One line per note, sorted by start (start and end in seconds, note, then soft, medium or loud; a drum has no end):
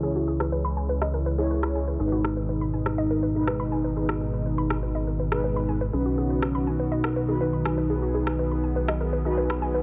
0.00 1.98 C#2 medium
0.00 1.96 C#3 medium
0.00 1.96 E3 medium
0.00 5.89 G#3 medium
0.00 0.92 E4 loud
0.00 1.36 E4 medium
0.00 1.96 G#4 medium
0.00 1.36 G#4 medium
0.00 0.09 G#4 medium
0.00 1.36 C#5 medium
0.16 0.19 F#4 medium
0.28 0.37 G#4 medium
0.40 0.46 B4 medium
0.40 cross-stick soft
0.52 0.61 B4 medium
0.65 0.68 B5 medium
0.77 0.81 G#5 medium
0.89 0.98 B4 medium
1.01 1.07 D#5 medium
1.01 cross-stick soft
1.14 1.17 A#4 medium
1.26 1.30 B4 medium
1.38 1.97 E4 medium
1.38 1.44 G#4 medium
1.38 1.97 G#4 medium
1.38 1.97 C#5 loud
1.51 1.60 B4 medium
1.63 1.67 B5 medium
1.63 cross-stick soft
1.75 1.79 G#5 medium
1.88 1.96 B4 medium
2.00 5.91 G#1 medium
2.00 5.89 B2 medium
2.00 5.89 D#3 medium
2.00 5.89 D#4 medium
2.00 2.64 D#4 loud
2.00 3.32 D#4 medium
2.00 2.06 G#4 medium
2.00 3.32 G#4 medium
2.00 3.32 B4 medium
2.12 2.16 F#4 medium
2.24 2.33 G#4 medium
2.24 cross-stick soft
2.37 2.43 B4 medium
2.49 2.58 B4 medium
2.61 2.65 B5 medium
2.74 3.38 D#4 medium
2.74 2.77 G#5 medium
2.86 2.95 B4 medium
2.86 cross-stick soft
2.98 3.04 D#5 medium
3.10 3.14 A#4 medium
3.23 3.26 B4 medium
3.35 3.94 D#4 loud
3.35 3.41 G#4 medium
3.35 3.94 G#4 medium
3.35 3.94 B4 loud
3.47 4.85 D#4 loud
3.47 3.56 B4 medium
3.47 cross-stick soft
3.60 3.63 B5 medium
3.72 3.76 G#5 medium
3.84 3.93 B4 medium
3.97 5.29 D#4 medium
3.97 4.03 G#4 medium
3.97 5.29 G#4 medium
3.97 5.29 B4 medium
4.09 4.12 F#4 medium
4.09 cross-stick soft
4.21 4.30 G#4 medium
4.33 4.39 B4 medium
4.46 4.55 B4 medium
4.58 4.62 B5 medium
4.70 4.74 G#5 medium
4.70 cross-stick soft
4.83 4.92 B4 medium
4.95 5.01 D#5 medium
5.07 5.11 A#4 medium
5.20 5.23 B4 medium
5.32 5.90 D#4 medium
5.32 5.38 G#4 medium
5.32 5.90 G#4 medium
5.32 5.90 B4 loud
5.32 cross-stick soft
5.44 5.53 B4 medium
5.56 5.60 B5 medium
5.69 5.72 G#5 medium
5.81 5.90 B4 medium
5.93 9.83 B1 medium
5.93 9.83 D#3 medium
5.93 9.83 F#3 medium
5.93 9.83 B3 medium
5.93 6.69 C#4 loud
5.93 7.26 D#4 medium
5.93 7.88 F#4 medium
5.93 7.26 F#4 medium
5.93 5.99 G#4 medium
5.93 7.26 B4 medium
6.06 6.09 F#4 medium
6.18 6.27 G#4 medium
6.30 6.36 B4 medium
6.42 6.51 B4 medium
6.42 cross-stick soft
6.55 6.58 B5 medium
6.67 7.31 D#4 medium
6.67 6.71 G#5 medium
6.79 6.88 B4 medium
6.92 6.98 D#5 medium
7.04 7.08 A#4 medium
7.04 cross-stick medium
7.16 7.20 B4 medium
7.29 7.87 D#4 loud
7.29 7.87 F#4 medium
7.29 7.34 G#4 medium
7.29 7.87 B4 loud
7.41 8.79 D#4 loud
7.41 7.50 B4 medium
7.53 7.57 B5 medium
7.65 7.69 G#5 medium
7.65 cross-stick medium
7.78 7.87 B4 medium
7.90 9.22 D#4 medium
7.90 9.22 F#4 medium
7.90 7.96 G#4 medium
7.90 9.83 G#4 medium
7.90 9.22 B4 medium
8.02 8.06 F#4 medium
8.15 8.24 G#4 medium
8.27 8.33 B4 medium
8.27 cross-stick soft
8.39 8.48 B4 medium
8.51 8.55 B5 medium
8.64 8.67 G#5 medium
8.76 8.85 B4 medium
8.88 8.94 D#5 medium
8.88 cross-stick soft
9.01 9.04 A#4 medium
9.13 9.17 B4 medium
9.25 9.83 D#4 medium
9.25 9.83 F#4 medium
9.25 9.31 G#4 medium
9.25 9.83 B4 loud
9.37 9.46 B4 medium
9.50 9.53 B5 medium
9.50 cross-stick soft
9.62 9.66 G#5 medium
9.74 9.83 B4 medium